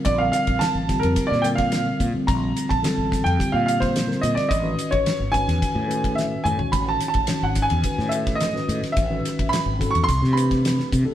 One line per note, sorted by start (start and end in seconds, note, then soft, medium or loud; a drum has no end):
0.00 0.13 D3 medium
0.00 0.13 G3 medium
0.00 0.13 C4 medium
0.00 0.14 F4 medium
0.00 0.14 A#4 medium
0.05 0.29 A#1 loud
0.05 0.20 D5 medium
0.05 kick loud
0.05 hi-hat pedal medium
0.05 ride medium
0.18 0.81 D3 medium
0.18 0.81 G3 medium
0.18 0.81 C4 medium
0.18 0.81 F4 medium
0.18 0.81 A#4 medium
0.18 0.30 F5 medium
0.32 0.61 F5 medium
0.32 snare soft
0.32 hi-hat pedal medium
0.32 ride medium
0.47 0.59 A#1 medium
0.47 kick medium
0.47 ride medium
0.59 1.03 A5 medium
0.59 snare loud
0.59 hi-hat pedal medium
0.59 ride medium
0.75 0.98 A1 medium
0.87 1.37 D3 medium
0.87 1.38 G3 medium
0.87 1.38 C4 medium
0.87 1.38 F4 medium
0.87 1.38 G4 medium
0.87 kick medium
0.87 snare soft
0.87 hi-hat pedal medium
0.87 ride medium
0.99 1.30 A#4 medium
0.99 ride medium
1.04 1.15 F2 medium
1.16 kick medium
1.16 hi-hat pedal medium
1.16 ride medium
1.27 1.43 D5 medium
1.31 1.89 A#2 medium
1.31 snare soft
1.42 2.05 D3 medium
1.42 2.05 G3 medium
1.42 2.05 C4 medium
1.42 2.06 F4 medium
1.42 2.06 A#4 medium
1.42 1.47 G5 medium
1.42 hi-hat pedal medium
1.42 ride medium
1.55 1.96 F5 medium
1.55 kick medium
1.55 snare soft
1.55 ride medium
1.72 snare medium
1.72 hi-hat pedal medium
1.72 ride medium
2.00 2.12 A#2 medium
2.00 kick medium
2.00 hi-hat pedal medium
2.00 ride medium
2.12 2.75 D3 medium
2.12 2.75 G3 medium
2.12 2.76 A3 medium
2.12 2.75 C4 medium
2.12 2.76 F4 medium
2.12 muted fretless electric bass stroke soft
2.27 2.51 A#1 loud
2.27 2.67 A#5 medium
2.27 kick loud
2.27 hi-hat pedal medium
2.27 ride medium
2.56 hi-hat pedal medium
2.56 ride medium
2.69 2.82 A#1 medium
2.69 3.21 A5 medium
2.69 kick medium
2.69 ride medium
2.82 3.32 D3 medium
2.82 3.32 G3 medium
2.82 3.32 C4 medium
2.82 3.33 F4 medium
2.82 3.33 A4 medium
2.82 snare loud
2.82 hi-hat pedal medium
2.82 ride medium
2.98 3.21 A1 medium
3.12 kick medium
3.12 snare soft
3.12 hi-hat pedal medium
3.12 ride medium
3.24 3.37 F2 medium
3.24 3.54 G5 medium
3.24 ride medium
3.37 4.00 D3 medium
3.37 4.00 G3 medium
3.37 4.00 C4 medium
3.37 4.00 F4 medium
3.37 4.01 G4 medium
3.37 kick medium
3.37 hi-hat pedal medium
3.37 ride medium
3.52 4.12 A#2 medium
3.52 3.64 F5 medium
3.66 3.81 F5 medium
3.66 hi-hat pedal medium
3.66 ride medium
3.80 4.19 C5 medium
3.80 kick medium
3.80 snare soft
3.80 ride medium
3.96 snare medium
3.96 hi-hat pedal medium
3.96 ride medium
4.06 4.49 D3 medium
4.06 4.49 G3 medium
4.06 4.50 C4 medium
4.06 4.50 F4 medium
4.06 4.50 A#4 medium
4.11 snare soft
4.21 4.35 A#2 medium
4.21 4.35 D#5 medium
4.21 hi-hat pedal medium
4.21 ride medium
4.35 4.50 D5 medium
4.35 muted fretless electric bass stroke soft
4.35 snare soft
4.35 ride soft
4.49 4.74 A1 loud
4.49 4.93 D#5 medium
4.49 kick loud
4.49 hi-hat pedal medium
4.49 ride medium
4.62 5.25 D#3 medium
4.62 5.25 G#3 medium
4.62 5.25 C#4 medium
4.62 5.25 F#4 medium
4.62 5.25 B4 medium
4.79 hi-hat pedal medium
4.79 ride medium
4.91 5.04 A1 medium
4.91 5.30 C#5 medium
4.91 kick medium
4.91 ride medium
5.06 snare loud
5.06 hi-hat pedal medium
5.06 ride medium
5.20 5.43 G#1 medium
5.31 5.82 D#3 medium
5.31 5.82 G#3 medium
5.31 5.82 C#4 medium
5.31 5.83 F#4 medium
5.31 5.83 B4 medium
5.31 6.19 G#5 loud
5.31 kick medium
5.31 hi-hat pedal medium
5.31 ride medium
5.48 5.59 E2 medium
5.48 snare soft
5.48 ride medium
5.62 kick medium
5.62 hi-hat pedal medium
5.62 ride medium
5.75 6.34 A2 medium
5.87 6.50 D#3 medium
5.87 6.50 G#3 medium
5.87 6.50 C#4 medium
5.87 6.50 F#4 medium
5.87 6.51 B4 medium
5.91 hi-hat pedal medium
5.91 ride medium
6.04 kick medium
6.04 ride medium
6.15 6.45 E5 medium
6.15 snare medium
6.15 hi-hat pedal medium
6.44 6.57 A2 medium
6.44 6.70 G#5 medium
6.44 hi-hat pedal medium
6.44 mid tom medium
6.56 7.19 D#3 medium
6.56 7.20 G#3 medium
6.56 7.20 C#4 medium
6.56 7.20 F#4 medium
6.56 7.20 C#5 medium
6.56 muted fretless electric bass stroke soft
6.56 floor tom medium
6.72 6.97 A1 loud
6.72 6.92 B5 medium
6.72 kick loud
6.72 hi-hat pedal medium
6.72 ride medium
6.89 7.07 A5 medium
7.00 snare soft
7.00 hi-hat pedal medium
7.00 ride medium
7.08 7.44 A5 medium
7.14 7.26 A1 medium
7.14 kick medium
7.14 ride medium
7.27 7.77 D#3 medium
7.27 7.77 G#3 medium
7.27 7.78 C#4 medium
7.27 7.78 F#4 medium
7.27 7.78 C#5 medium
7.27 snare loud
7.27 hi-hat pedal medium
7.27 ride medium
7.43 7.66 G#1 medium
7.43 7.65 F#5 medium
7.55 kick medium
7.55 snare soft
7.55 hi-hat pedal medium
7.55 ride medium
7.62 8.12 G#5 medium
7.70 7.83 E2 medium
7.70 ride medium
7.83 8.45 D#3 medium
7.83 8.46 G#3 medium
7.83 8.46 C#4 medium
7.83 8.46 F#4 medium
7.83 8.47 B4 medium
7.83 kick medium
7.83 hi-hat pedal medium
7.83 ride medium
7.98 8.57 A2 medium
7.98 snare soft
8.09 8.39 E5 medium
8.09 hi-hat pedal medium
8.09 ride medium
8.27 kick medium
8.27 snare soft
8.27 ride medium
8.35 8.77 D#5 medium
8.40 snare medium
8.40 hi-hat pedal medium
8.40 ride medium
8.53 9.03 D#3 medium
8.53 9.03 G#3 medium
8.53 9.03 C#4 medium
8.53 9.03 F#4 medium
8.53 9.04 B4 medium
8.53 snare soft
8.69 8.80 A2 medium
8.69 hi-hat pedal medium
8.69 ride medium
8.83 muted fretless electric bass stroke soft
8.83 snare soft
8.83 ride soft
8.92 9.52 E5 medium
8.97 9.20 A1 loud
8.97 kick loud
8.97 hi-hat pedal medium
8.97 ride medium
9.08 9.71 D#3 medium
9.08 9.71 G#3 medium
9.08 9.71 C#4 medium
9.08 9.72 F#4 medium
9.08 9.72 B4 medium
9.25 snare soft
9.25 hi-hat pedal medium
9.25 ride medium
9.39 9.50 A1 medium
9.39 kick medium
9.39 ride medium
9.49 9.94 B5 medium
9.49 hi-hat pedal medium
9.49 ride medium
9.54 snare loud
9.66 9.89 G#1 medium
9.78 10.07 D#3 medium
9.78 10.07 G#3 medium
9.78 10.07 C#4 medium
9.78 10.08 F#4 medium
9.78 10.08 A4 medium
9.78 kick medium
9.78 hi-hat pedal medium
9.78 ride medium
9.91 10.06 C#6 medium
9.95 10.06 E2 medium
9.95 ride medium
10.04 10.34 C6 loud
10.09 10.20 C2 medium
10.09 kick medium
10.09 hi-hat pedal medium
10.09 ride medium
10.22 10.80 C3 medium
10.22 snare soft
10.33 10.96 E3 medium
10.33 10.96 A3 medium
10.33 10.96 D4 medium
10.33 10.97 G4 medium
10.33 10.97 B4 medium
10.33 10.86 B5 medium
10.37 hi-hat pedal medium
10.37 ride medium
10.51 kick medium
10.51 snare soft
10.51 ride medium
10.65 snare loud
10.65 hi-hat pedal medium
10.65 ride medium
10.80 snare soft
10.92 11.04 C3 medium
10.92 kick medium
10.92 hi-hat pedal medium
10.92 ride medium
11.03 11.14 E3 medium
11.03 11.14 A3 medium
11.03 11.14 D4 medium
11.03 11.14 G4 medium
11.03 11.14 A4 medium
11.03 muted fretless electric bass stroke soft